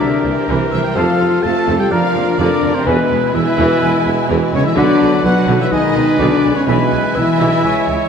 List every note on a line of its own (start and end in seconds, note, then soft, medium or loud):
0.00 0.08 C2 medium
0.00 0.94 C3 medium
0.00 0.46 D3 medium
0.00 0.93 E3 medium
0.00 0.08 G3 medium
0.00 0.46 D4 loud
0.00 0.95 G4 medium
0.00 0.97 A#4 medium
0.00 1.91 C5 medium
0.00 0.46 D5 medium
0.00 0.17 E5 medium
0.00 0.96 E5 medium
0.00 0.22 A#5 medium
0.23 0.33 C2 medium
0.23 0.32 C2 medium
0.23 0.32 A#3 medium
0.48 0.57 C2 medium
0.48 0.56 C2 medium
0.48 0.70 E3 medium
0.71 0.81 C2 medium
0.71 0.80 C2 medium
0.71 0.82 E3 medium
0.71 0.80 G3 medium
0.71 0.83 E4 loud
0.71 0.76 E5 medium
0.71 0.83 E5 medium
0.83 0.95 G3 medium
0.83 0.95 G4 loud
0.83 0.95 G5 medium
0.83 0.89 G5 medium
0.95 1.05 F1 loud
0.95 1.04 F2 medium
0.95 1.42 C3 medium
0.95 1.18 C3 medium
0.95 1.43 F3 medium
0.95 1.42 F3 medium
0.95 1.43 F4 loud
0.95 1.91 F4 medium
0.95 1.43 A4 medium
0.95 1.12 C5 medium
0.95 1.43 F5 loud
0.95 1.44 F5 loud
0.95 2.86 F5 medium
0.95 1.18 A5 medium
1.20 1.29 F1 medium
1.20 1.28 F2 medium
1.20 1.28 F3 medium
1.42 1.53 F1 medium
1.42 1.52 F2 medium
1.42 1.90 C3 medium
1.42 1.90 F3 medium
1.42 1.78 A3 medium
1.42 1.51 A3 medium
1.42 1.78 A4 loud
1.42 1.94 A4 medium
1.42 1.79 A5 loud
1.42 1.78 A5 loud
1.67 1.77 F1 medium
1.67 1.75 F2 medium
1.67 1.89 C3 medium
1.78 1.90 G3 medium
1.78 1.90 G4 loud
1.78 1.93 G5 medium
1.78 1.91 G5 medium
1.91 2.01 F1 medium
1.91 1.99 F2 medium
1.91 2.37 D3 medium
1.91 2.37 F3 medium
1.91 2.00 F3 medium
1.91 2.84 D4 medium
1.91 2.38 F4 loud
1.91 2.39 A#4 medium
1.91 2.86 D5 medium
1.91 2.07 D5 medium
1.91 2.37 F5 loud
1.91 2.39 F5 loud
1.91 2.14 A#5 medium
2.15 2.25 F1 medium
2.15 2.23 F2 medium
2.15 2.24 A#3 medium
2.38 2.49 F1 loud
2.38 2.46 F2 medium
2.38 2.85 D3 medium
2.38 2.73 D3 medium
2.38 2.61 D3 medium
2.38 2.49 F3 medium
2.38 2.75 D4 loud
2.38 2.88 A#4 medium
2.38 2.73 D5 loud
2.38 2.76 D5 loud
2.62 2.73 F1 medium
2.62 2.70 F2 medium
2.62 2.73 F3 medium
2.62 2.72 F3 medium
2.74 2.85 C3 medium
2.74 2.86 C4 loud
2.74 2.86 C5 medium
2.85 2.96 E1 loud
2.85 2.94 E2 loud
2.85 3.33 B2 medium
2.85 3.32 B2 medium
2.85 3.08 E3 loud
2.85 3.32 G#3 medium
2.85 3.34 B3 loud
2.85 4.77 E4 medium
2.85 3.02 B4 medium
2.85 6.68 B4 medium
2.85 3.34 B4 medium
2.85 3.37 B4 medium
2.85 3.35 B4 medium
2.85 4.77 G#5 medium
2.85 3.09 G#5 medium
3.10 3.21 E1 medium
3.10 3.18 E2 medium
3.10 3.19 G#3 medium
3.33 3.45 E1 medium
3.33 3.42 E2 medium
3.33 4.74 B2 medium
3.33 4.29 E3 medium
3.33 4.74 G#3 medium
3.33 3.42 B3 medium
3.33 4.28 E4 loud
3.33 4.47 B4 medium
3.33 4.30 E5 loud
3.33 4.28 E5 medium
3.58 3.68 E1 loud
3.58 3.66 E2 loud
3.58 3.80 E3 loud
3.81 3.92 E1 medium
3.81 3.89 E2 medium
3.81 3.90 G#3 medium
3.81 3.98 B4 medium
3.81 4.04 G#5 medium
4.05 4.16 E1 medium
4.05 4.13 E2 medium
4.05 4.13 B3 medium
4.29 4.40 E1 loud
4.29 4.37 E2 medium
4.29 4.51 E3 medium
4.52 4.64 E1 medium
4.52 4.61 E2 medium
4.52 4.64 C#3 loud
4.52 4.60 G#3 medium
4.52 4.65 C#4 loud
4.52 4.64 C#5 medium
4.52 4.65 C#5 loud
4.65 4.77 E3 medium
4.65 4.77 E4 loud
4.65 4.76 E5 medium
4.65 4.77 E5 loud
4.76 4.85 B1 loud
4.76 4.87 B1 loud
4.76 5.23 B2 medium
4.76 5.23 D3 loud
4.76 4.99 D3 loud
4.76 5.22 F#3 medium
4.76 5.24 D4 loud
4.76 5.70 F#4 medium
4.76 4.94 B4 medium
4.76 5.21 B4 medium
4.76 5.24 D5 loud
4.76 5.25 D5 loud
4.76 5.70 F#5 medium
4.76 4.99 F#5 medium
5.01 5.09 B1 medium
5.01 5.12 B1 medium
5.01 5.09 F#3 medium
5.23 5.32 B1 medium
5.23 5.35 B1 medium
5.23 5.71 B2 medium
5.23 5.71 F#3 medium
5.23 5.60 F#3 loud
5.23 5.32 B3 medium
5.23 5.60 F#4 loud
5.23 5.71 B4 medium
5.23 5.59 F#5 loud
5.23 5.60 F#5 loud
5.47 5.55 B1 loud
5.47 5.58 B1 loud
5.47 5.70 D3 loud
5.60 5.72 E3 medium
5.60 5.72 E4 loud
5.60 5.65 E5 loud
5.60 5.74 E5 loud
5.71 5.80 B1 medium
5.71 5.82 B1 medium
5.71 6.66 B2 medium
5.71 6.19 D#3 loud
5.71 5.79 G#3 medium
5.71 6.67 G#3 medium
5.71 5.94 B3 medium
5.71 6.19 D#4 loud
5.71 6.66 B4 loud
5.71 6.19 D#5 loud
5.71 5.89 D#5 medium
5.71 8.09 G#5 loud
5.71 5.95 G#5 medium
5.95 6.03 B1 medium
5.95 6.06 B1 medium
5.95 6.03 B3 medium
6.19 6.27 B1 medium
6.19 6.29 B1 loud
6.19 6.55 D3 medium
6.19 6.42 D#3 loud
6.19 6.55 D4 loud
6.19 6.55 D5 loud
6.43 6.51 B1 medium
6.43 6.53 B1 medium
6.43 6.52 G#3 medium
6.55 6.68 C#3 medium
6.55 6.67 C#4 loud
6.55 6.67 C#5 medium
6.55 6.61 C#5 medium
6.67 6.75 B1 loud
6.67 6.77 B1 loud
6.67 7.15 B2 loud
6.67 6.90 E3 medium
6.67 7.15 E3 medium
6.67 7.15 G#3 medium
6.67 7.16 B3 loud
6.67 8.09 E4 loud
6.67 7.16 B4 loud
6.67 7.15 B4 medium
6.67 7.17 B4 loud
6.67 8.09 E5 medium
6.67 6.85 E5 medium
6.67 6.90 G#5 medium
6.91 6.99 B1 medium
6.91 7.02 B1 medium
6.91 6.99 G#3 medium
7.15 7.25 B1 medium
7.15 7.24 B1 medium
7.15 7.63 E3 medium
7.15 8.09 E3 medium
7.15 7.63 G#3 medium
7.15 7.23 B3 medium
7.15 8.09 E4 loud
7.15 7.63 B4 medium
7.15 8.09 E5 loud
7.40 7.50 B1 loud
7.40 7.48 B1 medium
7.40 7.62 E3 medium
7.63 7.71 C#2 medium
7.63 7.74 C#2 medium
7.63 7.72 E3 medium
7.63 8.09 E3 medium
7.63 8.09 G#3 medium
7.63 8.09 C#5 medium
7.63 7.81 E5 medium
7.63 7.86 G#5 medium
7.88 7.96 C#2 medium
7.88 7.98 C#2 medium
7.88 7.96 G#3 medium